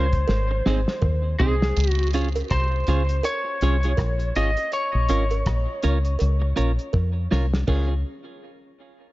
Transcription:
Already playing: C#2 C5
0.13 kick, closed hi-hat
0.28 G#1, snare, cowbell
0.51 muted clean electric guitar stroke
0.66 G#1 C4 D#4 G#4 C5, snare
0.88 snare
1.02 D#2, kick, mid tom, cowbell
1.39 C2 C4 D#4 G#4 C5, floor tom
1.62 snare
1.76 C#2, closed hi-hat, vibraslap
1.91 F#4
2.13 C#4 F4 G#4 C#5, closed hi-hat
2.35 closed hi-hat, cowbell
2.50 C2 C5, kick, cross-stick, closed hi-hat
2.87 C#2 C#4 F4 G#4 C#5, closed hi-hat
3.09 closed hi-hat
3.23 C#5, closed hi-hat, cowbell
3.61 C2 C#4 F4 G#4 C#5, closed hi-hat
3.83 C#4 F4 G#4 C#5, closed hi-hat
3.97 A#1, kick, cross-stick, closed hi-hat, cowbell
4.20 closed hi-hat
4.35 G#1 C#4 F4 G#4 C#5 D#5, closed hi-hat
4.57 muted clean electric guitar stroke, closed hi-hat
4.72 C#5, closed hi-hat
4.95 A#1
5.09 G#1 C#4 F4 A#4 C#5, closed hi-hat
5.30 closed hi-hat, cowbell
5.46 A#1, kick, cross-stick, closed hi-hat
5.83 C#2 C#4 F4 A#4 C#5, closed hi-hat
6.05 closed hi-hat
6.19 C#2, closed hi-hat, cowbell
6.42 muted clean electric guitar stroke
6.56 A#1 C#4 F4 A#4 C#5, closed hi-hat
6.79 closed hi-hat
6.93 F2, kick, cowbell
7.31 C2 C#4 F4 A#4 C#5, snare
7.54 snare
7.67 C#2 C#4 F4 G#4 C#5, kick, china, cowbell

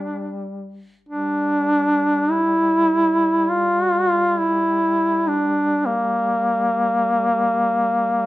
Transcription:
Already playing: G3 D4
1.09 G3 D4
2.31 E4
3.50 F4
4.38 E4
5.28 D4
5.86 A#3

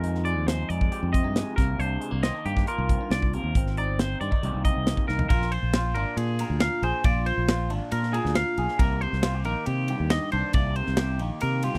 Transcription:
Already playing: F2 D#3 G#3 F4 A#4
0.04 D#4, closed hi-hat
0.15 snare
0.25 G#3 D5, closed hi-hat
0.37 D#2
0.47 F3 D#4 C5, snare, closed hi-hat
0.69 F2 G#3 D5, closed hi-hat
0.81 kick
0.92 G4, closed hi-hat
1.03 F2
1.13 C3 C4 D#5, kick, closed hi-hat
1.24 G2 D#4
1.36 G#3, snare, closed hi-hat
1.56 C2 C3 A#3 A#4, kick, snare, closed hi-hat
1.79 C2 D4 C5, closed hi-hat
2.01 G#3, closed hi-hat
2.11 C2 A#3
2.23 D#3 C4 D#5, snare, closed hi-hat
2.35 D4
2.45 G2 A#3 G4, closed hi-hat
2.57 kick, snare
2.67 F4 A#4, closed hi-hat
2.78 C2
2.89 G2 C4, kick, closed hi-hat
3.01 D4
3.10 C2 A#3 D5, snare, closed hi-hat
3.22 kick
3.33 C3 A#3 A#4, closed hi-hat
3.43 D#2
3.55 G#1 C4, kick, closed hi-hat
3.67 snare
3.77 D#4 D5, closed hi-hat
3.88 G1
3.99 C4 C5, snare, closed hi-hat
4.20 G2 D#3 C4 D5, closed hi-hat
4.31 D#4, kick
4.43 C2 C3 D#3 A#3 D#4 G4, closed hi-hat
4.54 C2
4.65 D#4 D#5, kick, closed hi-hat
4.77 C2
4.87 A#3, snare, closed hi-hat
4.97 kick
5.08 C2 D#3 D#4 A#4, snare
5.19 floor tom
5.29 A#1 A#2 F4 A#4, kick, ride
5.42 snare
5.52 C5, ride
5.63 A#1
5.73 F4, snare, ride
5.95 G#1 D4 F4 A#4, ride
6.17 A#2 G#4, ride
6.39 A#2 A#4, ride
6.50 D2
6.60 F5, snare, ride
6.82 A#1 G#4 C5, ride
7.04 A#1 A#2 F4 D5, kick, ride
7.26 C5, ride
7.38 A#1
7.48 F4, snare, ride
7.70 G#1 D4 F4, ride
7.91 A#2 A#4, ride
8.03 snare
8.13 A#2 G#4 A#4, ride
8.25 D2, snare
8.35 F5, snare, ride
8.57 B1 G#4, ride
8.68 snare
8.79 C2 C3 A#3 A#4, kick, ride
9.01 C5, ride
9.13 C2, snare
9.22 F4, snare, ride
9.35 G4
9.45 A#1 D#3 A#3 A#4, ride
9.66 C3 G4, ride
9.88 G2 G4, ride
10.00 D#2
10.10 D#5, snare, ride
10.32 C2 D4 C5, ride
10.53 C2 C3 A#3 D5, kick, ride
10.76 C5, ride
10.86 C2, snare
10.97 G4, snare, ride
11.19 A#1 D#3 A#3, ride
11.40 C3 A#4, ride
11.62 G2 F4 G4, ride
11.74 D#2 G4, snare

